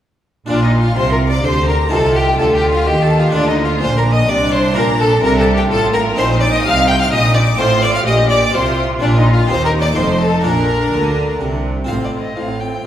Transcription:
0.46 double bass section A#1, cello section A#2, harpsichord A#2 D4 F4, violin section D4 D5, violin D4, viola section F4
0.64 violin D#4, violin section D#4 D#5
0.80 violin F4, violin section F4 F5
0.96 double bass section C2, cello section C3, harpsichord C3, viola section F4, violin section C5 C6, violin C5
1.12 violin section A#4 A#5, violin A#4
1.28 violin section D5 D6, violin D5
1.43 double bass section D2, harpsichord D3, cello section D3, viola section G4, violin section C5 C6, violin C5
1.66 violin section A#4 A#5, violin A#4
1.89 double bass section C2, harpsichord C3 D#4 F4, cello section C3, viola section F4, violin section A4 A5, violin A4
2.15 violin section G4 G5, violin G4
2.38 double bass section D2, cello section D3, harpsichord D3, viola section F4, violin section A4 A5, violin A4
2.54 violin section G4 G5, violin G4
2.70 violin section F4 F5, violin F4
2.86 double bass section D#2, cello section D#3, harpsichord D#3, viola section G4, violin section G4 G5, violin G4
3.03 violin A4, violin section A4 A5
3.19 violin F4, violin section F4 F5
3.29 harpsichord A#3 D4 F4, violin section D5
3.33 double bass section D2, cello section D3, harpsichord D3, violin D4, violin section D4, viola section F4
3.48 violin D#4, violin section D#4 D#5
3.65 violin section F4 F5, violin F4
3.79 double bass section A#1, harpsichord A#2, cello section A#2, viola section D4, violin C5, violin section C5 C6
3.97 violin A#4, violin section A#4 A#5
4.12 violin D#5, violin section D#5 D#6
4.28 double bass section C2, cello section C3, harpsichord C3, violin D5, violin section D5 D6
4.51 violin section C5 C6, violin C5
4.73 cello section A#2, harpsichord A#3 D4 F4, violin A#4, violin section A#4
4.77 double bass section A#1, harpsichord A#2, violin section A#5
4.99 violin A4, violin section A4 A5
5.23 double bass section C2, cello section C3, harpsichord C3, viola section D4, violin A#4, violin section A#4 A#5
5.38 violin A4, violin section A4 A5
5.55 violin G4, violin section G4 G5
5.70 double bass section A1, cello section A2, harpsichord A2, viola section F4, violin A4, violin section A4 A5
5.93 violin A#4, violin section A#4 A#5
6.15 double bass section A#1, cello section A#2, harpsichord A#2 C4 D#4, viola section D#4, violin C5, violin section C5 C6
6.40 violin D5, violin section D5 D6
6.52 violin D#5, violin section D#5 D#6
6.62 double bass section C2, cello section C3, harpsichord C3, violin F5, violin section F5 F6
6.87 violin G5, violin section G5 G6
7.00 violin F5, violin section F5 F6
7.11 double bass section A#1, harpsichord A#2, cello section A#2, viola section D#4, violin D#5, violin section D#5 D#6
7.34 violin D5, violin section D5 D6
7.57 double bass section A1, cello section A2, harpsichord A2 C4 F4, viola section F4, violin C5, violin section C5 C6
7.81 violin section D5 D6, violin D5
7.94 violin section F5 F6, violin F5
8.06 double bass section A#1, cello section A#2, harpsichord A#2, viola section G4, violin section D#5 D#6, violin D#5
8.29 violin section D5 D6, violin D5
8.54 double bass section C2, cello section C3, harpsichord C3, viola section F4, violin section C5 C6, violin C5
8.99 double bass section A#1, harpsichord A#2 A#3 D4, cello section A#2, violin section D4 D5, violin D4, viola section F4
9.16 violin section D#4 D#5, violin D#4
9.32 violin section F4 F5, violin F4
9.47 double bass section D#2, harpsichord D#2 C4 G4, cello section D#2, viola section D#4, violin section C5 C6, violin C5
9.64 violin section A#4 A#5, violin A#4
9.79 violin section D5 D6, violin D5
9.93 harpsichord A3 D#4 F4, violin section C5 C6
9.97 double bass section F1, harpsichord F2, cello section F2, viola section D#4, violin C5
10.19 violin section A4 A5, violin A4
10.41 double bass section A#1, harpsichord A#3 D4 F4, violin section A#4 A#5
10.45 cello section A#2, harpsichord A#2, viola section D4, violin A#4
10.93 double bass section D2, cello section D3, harpsichord D3
11.41 double bass section C2, harpsichord C3, cello section C3
11.85 harpsichord C4 F4 C5, violin section F4, violin F5
11.89 double bass section A1, harpsichord A2, cello section A2, viola section C4, violin section C5
12.04 violin D5
12.12 viola section C4, violin section F4 C5
12.20 violin D#5
12.36 double bass section A1, harpsichord A2, cello section A2, viola section C4, violin section F4 C5, violin F5
12.60 viola section C4, violin section F4 C5, violin G5

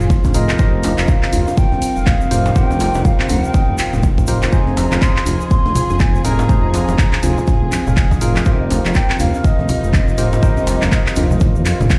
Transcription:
Already playing: string section F3 C4 F4 G#4, tine electric piano D#4 F4 G#4 C5
0.00 detuned saw bass F1, handpan F4, shaker
0.10 kick, shaker
0.24 handpan C4, kick, djembe tone, shaker
0.34 detuned saw bass F1, tine electric piano D#4 F4 G#4 A#4, bansuri D#5, mid tom, open hi-hat, shaker
0.49 handpan F5, clap, djembe slap, djembe tone, shaker
0.59 detuned saw bass F1, string section C3 G3 C4 D#4, tine electric piano D#4 G4 A#4 C5, handpan D#5, kick, shaker
0.83 handpan F4, open hi-hat, djembe slap, djembe tone, shaker
0.98 detuned saw bass F1, clap, djembe slap, shaker
1.07 bansuri F5, kick, djembe tone, shaker
1.23 clap
1.33 detuned saw bass F1, handpan F4, open hi-hat, djembe bass, shaker
1.47 handpan F4, djembe tone, shaker
1.57 bansuri G5, kick, shaker
1.72 detuned saw bass F1, handpan C4, djembe tone
1.82 open hi-hat, shaker
1.96 detuned saw bass F1, handpan F5, shaker
2.06 handpan D#5, bansuri F5, kick, clap, djembe tone, shaker
2.21 shaker
2.31 detuned saw bass F1, tine electric piano D#4 G4 A#4 C5, handpan F4, mid tom, open hi-hat, djembe tone, shaker
2.46 mid tom, djembe slap, shaker
2.56 detuned saw bass F1, tine electric piano D#4 G4 A#4 C5, bansuri G5, kick, shaker
2.71 djembe tone, shaker
2.80 handpan F4, open hi-hat, djembe slap, shaker
2.94 detuned saw bass F1, handpan F4, djembe slap, djembe tone, shaker
3.05 bansuri F5, kick, shaker
3.20 handpan C4, clap
3.29 detuned saw bass F1, bansuri F#5, open hi-hat, djembe tone, djembe bass, shaker
3.44 handpan F5, bansuri G5, shaker
3.54 handpan D#5, kick, mid tom, djembe tone, shaker
3.69 detuned saw bass F1
3.78 handpan F4, clap, open hi-hat, shaker
3.93 detuned saw bass F1, mid tom, djembe tone, shaker
4.03 kick, shaker
4.17 kick, djembe tone, shaker
4.27 detuned saw bass F1, tine electric piano D#4 G4 A#4 C5, handpan F4, mid tom, open hi-hat, shaker
4.42 handpan F4, clap, djembe slap, shaker
4.52 detuned saw bass F1, string section F3 G#4 G#5, tine electric piano D#4 F4 G#4 C5, bansuri G#5, kick, shaker
4.67 handpan C4, djembe tone
4.77 bansuri A#5, open hi-hat, djembe slap, shaker
4.92 detuned saw bass F1, handpan F5, clap, djembe slap, high conga, shaker
5.02 handpan D#5, bansuri C6, kick, clap, djembe tone, shaker
5.16 clap
5.26 detuned saw bass F1, handpan F4, open hi-hat, djembe tone, djembe bass, shaker
5.41 shaker
5.51 bansuri C6, kick, shaker
5.65 detuned saw bass F1, djembe tone
5.75 handpan F4, open hi-hat, high conga, low conga, shaker
5.90 detuned saw bass F1, handpan F4, high conga, djembe tone, shaker
5.99 bansuri G#5, kick, clap, high conga, shaker
6.15 handpan C4, shaker
6.24 detuned saw bass F1, tine electric piano D#4 F4 G#4 A#4, bansuri A#5, mid tom, open hi-hat, djembe tone, shaker
6.39 handpan F5, mid tom, djembe slap, shaker
6.49 detuned saw bass F1, tine electric piano D#4 F4 G#4 C5, handpan D#5, kick, djembe tone, shaker
6.74 handpan F4, bansuri A#5, open hi-hat, djembe slap, shaker
6.88 detuned saw bass F1, djembe slap, high conga, djembe tone, shaker
6.98 kick, clap, shaker
7.12 clap, djembe tone
7.23 detuned saw bass F1, handpan F4, bansuri G#5, open hi-hat, djembe bass, shaker
7.38 handpan F4, low conga, shaker
7.47 kick, mid tom, djembe tone, shaker
7.62 detuned saw bass F1, handpan C4
7.72 clap, open hi-hat, djembe tone, high conga, shaker
7.87 detuned saw bass F1, handpan F5, mid tom, low conga, shaker
7.97 handpan D#5, kick, clap, shaker
8.11 kick, djembe tone, high conga, shaker
8.21 detuned saw bass F1, tine electric piano D#4 F4 G#4 A#4, handpan F4, bansuri F5, mid tom, open hi-hat, shaker
8.36 clap, djembe slap, djembe tone, high conga, shaker
8.45 detuned saw bass F1, string section C3 G3 C4 D#4, tine electric piano D#4 G4 A#4 C5, kick, shaker
8.71 handpan F4, open hi-hat, djembe slap, djembe tone, shaker
8.85 detuned saw bass F1, handpan F4, clap, djembe slap, high conga, shaker
8.94 bansuri G5, kick, clap, djembe tone, shaker
9.10 handpan C4, clap
9.19 detuned saw bass F1, bansuri F5, open hi-hat, djembe bass, shaker
9.34 handpan F5, djembe tone, shaker
9.44 handpan D#5, bansuri D#5, kick, shaker
9.59 detuned saw bass F1, djembe tone
9.69 handpan F4, open hi-hat, high conga, low conga, shaker
9.83 detuned saw bass F1, high conga, shaker
9.93 kick, clap, high conga, djembe tone, shaker
10.08 shaker
10.18 detuned saw bass F1, tine electric piano D#4 G4 A#4 C5, handpan F4, mid tom, open hi-hat, djembe tone, shaker
10.33 handpan F4, mid tom, djembe slap, shaker
10.43 detuned saw bass F1, tine electric piano D#4 G4 A#4 C5, kick, shaker
10.57 handpan C4, djembe tone, shaker
10.67 open hi-hat, djembe slap, shaker
10.82 detuned saw bass F1, handpan F5, clap, djembe slap, high conga, djembe tone, shaker
10.92 handpan D#5, kick, clap, shaker
11.06 clap, shaker
11.16 detuned saw bass F1, handpan F4, open hi-hat, djembe tone, djembe bass, shaker
11.31 low conga, shaker
11.40 kick, mid tom, djembe tone, high conga, shaker
11.55 detuned saw bass F2, shaker
11.66 handpan F4, clap, open hi-hat, high conga, shaker
11.80 detuned saw bass D#1, handpan F4, mid tom, djembe tone, low conga, shaker
11.90 kick, clap, shaker

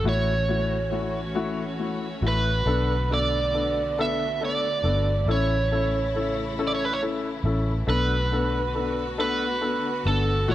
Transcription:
Already playing: string section A3 F#4
0.03 fingered electric bass A1, string section E3 C#4, grand piano A3 E4 F#4
0.09 electric slide guitar C#5
0.48 grand piano A3 E4 F#4
0.91 grand piano A3 E4 F#4
1.35 grand piano A3 E4 F#4
1.79 grand piano A3 E4 F#4
2.22 fingered electric bass A1, grand piano A3 E4 F#4
2.28 electric slide guitar B4
2.65 fingered electric bass B1, string section D3 B3, grand piano B3 D4 A4
3.11 grand piano B3 D4 A4, electric slide guitar D5
3.54 grand piano B3 D4 A4
3.98 grand piano B3 D4 A4, electric slide guitar E5
4.40 grand piano B3 D4 A4
4.45 electric slide guitar D5
4.83 fingered electric bass G1, grand piano B3 D4 A4
5.26 fingered electric bass A1, string section C#3 E3 E4, grand piano C#4 E4 A4
5.31 electric slide guitar C#5
5.72 grand piano C#4 E4 A4
6.15 grand piano C#4 E4 A4
6.59 grand piano C#4 E4 A4
6.67 electric slide guitar D5
6.75 electric slide guitar C#5
6.85 electric slide guitar B4
6.93 electric slide guitar C#5
7.02 grand piano C#4 E4 A4
7.44 fingered electric bass A1, grand piano C#4 E4 A4
7.87 fingered electric bass B1, string section D3 B3 F#4, grand piano B3 D4 A4, electric slide guitar B4
8.32 grand piano B3 D4 A4
8.74 grand piano B3 D4 A4
9.18 grand piano B3 D4 A4, electric slide guitar B4
9.61 grand piano B3 D4 A4
10.05 fingered electric bass G1, grand piano B3 D4 A4, electric slide guitar A4
10.48 fingered electric bass A1, string section E3 A3 C#4, grand piano A3 E4 F#4, electric slide guitar C#5

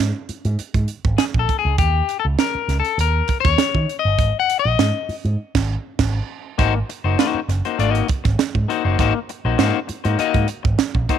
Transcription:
0.00 picked electric bass G#2
0.29 muted picked electric bass stroke, closed hi-hat
0.45 picked electric bass G#2, closed hi-hat
0.59 muted picked electric bass stroke, closed hi-hat
0.74 picked electric bass G#2, kick, closed hi-hat
0.88 closed hi-hat
1.05 picked electric bass G#1, kick
1.18 clean electric guitar G#4, snare, closed hi-hat
1.34 picked electric bass A#1, kick
1.39 clean electric guitar A4
1.49 kick, closed hi-hat
1.59 clean electric guitar G#4
1.65 picked electric bass C#2
1.78 picked electric bass D#2, clean electric guitar G4, kick, closed hi-hat
2.09 closed hi-hat
2.20 clean electric guitar A4
2.25 picked electric bass C#2
2.39 clean electric guitar A#4, snare, closed hi-hat
2.55 muted picked electric bass stroke
2.68 picked electric bass C#2, snare, closed hi-hat
2.80 clean electric guitar A4
2.85 closed hi-hat
2.98 picked electric bass D#2, clean electric guitar A#4, closed hi-hat
3.28 kick, closed hi-hat
3.40 clean electric guitar C#5, snare
3.45 picked electric bass D#2, kick
3.58 snare, closed hi-hat
3.75 picked electric bass D#3, kick
3.89 closed hi-hat
3.99 clean electric guitar D#5
4.05 picked electric bass G1
4.19 picked electric bass G#1, kick, closed hi-hat
4.40 clean electric guitar F#5
4.50 closed hi-hat
4.59 clean electric guitar D#5
4.65 picked electric bass A#1
4.79 picked electric bass G#2, snare, closed hi-hat
5.09 muted picked electric bass stroke, open hi-hat
5.25 picked electric bass G#2, closed hi-hat
5.55 picked electric bass G#1, kick, snare, crash
5.99 picked electric bass G#1, kick, snare, crash
6.58 picked electric bass G#1, clean electric guitar A#3 D#4 F#4 C5, kick, closed hi-hat
6.75 muted clean electric guitar stroke
6.89 muted clean electric guitar stroke, closed hi-hat
7.04 picked electric bass F#1, clean electric guitar A#3 D#4 F#4 C5
7.19 clean electric guitar A#3 D#4 F#4 C5, snare, closed hi-hat
7.34 muted picked electric bass stroke
7.48 picked electric bass F#1, muted clean electric guitar stroke, snare, closed hi-hat
7.65 clean electric guitar A#3 D#4 F#4 C5, closed hi-hat
7.79 picked electric bass G#1, clean electric guitar A3 D4 F4 D5, closed hi-hat
7.90 clean electric guitar A#3 D#4 F#4 D#5
7.95 closed hi-hat
8.08 muted clean electric guitar stroke, kick, closed hi-hat
8.24 picked electric bass G#1, muted clean electric guitar stroke, kick, snare
8.39 muted clean electric guitar stroke, snare, closed hi-hat
8.55 picked electric bass G#2, muted clean electric guitar stroke, kick
8.68 clean electric guitar A#3 D#4 F#4 C5, closed hi-hat
8.85 picked electric bass F#1, clean electric guitar A#3 D#4 F#4 C5
8.99 picked electric bass G#1, clean electric guitar A#3 D#4 F#4 C5, kick, closed hi-hat
9.15 muted clean electric guitar stroke
9.29 muted clean electric guitar stroke, closed hi-hat
9.45 picked electric bass A#1, clean electric guitar A#3 D#4 F#4 C5
9.58 picked electric bass G#2, clean electric guitar A#3 D#4 F#4 C5, snare, closed hi-hat
9.87 muted clean electric guitar stroke, muted picked electric bass stroke, closed hi-hat
10.04 picked electric bass G#2, clean electric guitar A#3 D#4 F#4 C5, closed hi-hat
10.18 clean electric guitar A#3 D#4 F#4 D#5, muted picked electric bass stroke, closed hi-hat
10.34 picked electric bass G#2, kick, closed hi-hat
10.48 muted clean electric guitar stroke, closed hi-hat
10.63 picked electric bass G#1, muted clean electric guitar stroke, kick
10.78 muted clean electric guitar stroke, snare, closed hi-hat
10.95 picked electric bass A#1, muted clean electric guitar stroke, kick
11.09 clean electric guitar A#3 D#4 F#4 C5, kick, closed hi-hat

